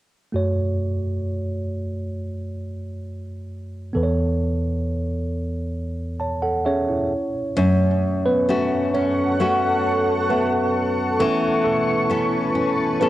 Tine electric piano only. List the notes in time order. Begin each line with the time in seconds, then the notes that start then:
0.32 F#2 A3 F#4 C#5
3.93 E2 E3 B3 A4 B4
4.03 C#5
6.20 C#5 A5
6.43 A4 F#5
6.65 C#4 G#4 C#5 E5
6.89 E4 C#5
7.57 F#3 A3 C#4 C#5
8.26 B3 B4
8.94 C#4 C#5
10.30 B3 B4
11.20 A3 B3 C#4 A4
11.64 A3 A4
13.00 B3 B4